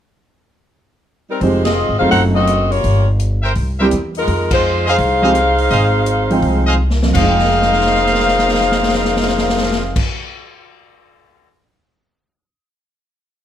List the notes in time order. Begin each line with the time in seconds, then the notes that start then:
1.30 G3 C4 D#4 A#4
1.41 F1 F3 G#3 C4 D#4 F4 G4 C5, kick, open hi-hat
1.64 C4 F4 G#4 D#5, snare, ride
1.89 G#1
1.98 F1 F#3 A3 C4 D#4 F4 G#4 C5 F5
2.10 F#1 D#4 A4 C5 F#5, kick, open hi-hat
2.35 C4 F#4 A4 D#5
2.47 cross-stick, closed hi-hat
2.70 A#3 F4 G4 C#5, open hi-hat
2.84 G1, kick, open hi-hat
3.20 closed hi-hat
3.42 A#4 C5 E5 G5
3.55 C2, kick, open hi-hat
3.79 G3 A#3 C4 E4 G4 A#4 C5 E5 G5
3.91 E2, cross-stick, closed hi-hat
4.15 G#3 D#4 F4 A#4, open hi-hat
4.28 F2, kick, open hi-hat
4.51 G#3 D#4 F4 C5, kick, crash
4.86 D#4 G#4 C5 D#5 F5
4.98 C2, kick, open hi-hat
5.22 F3 G#3 C4 D#4 G4 G#4 C5 D#5 F5
5.35 cross-stick, closed hi-hat
5.58 open hi-hat
5.70 G#1 G#4 C5 D#5 F5, kick, open hi-hat
6.06 closed hi-hat
6.30 F3 G#3 C4 D#4 G5, open hi-hat
6.42 C2, kick, open hi-hat
6.67 G#4 C5 D#5 F5
6.90 snare
7.02 F2, snare
7.10 F3
7.14 F1 G#3 D#4 G#4 C5 D#5 F5, kick, crash
7.22 D#4
7.29 G5
7.39 snare
7.45 snare
7.51 snare
7.62 snare
7.73 snare
7.81 snare
7.87 snare
7.95 snare
8.06 snare
8.15 snare
8.20 snare
8.28 snare
8.39 snare
8.48 snare
8.54 snare
8.61 snare
8.72 snare
8.83 snare
8.88 snare
8.94 snare
9.05 snare
9.16 snare
9.22 snare
9.28 snare
9.38 snare
9.49 snare
9.57 snare
9.63 snare
9.72 snare
9.96 kick, crash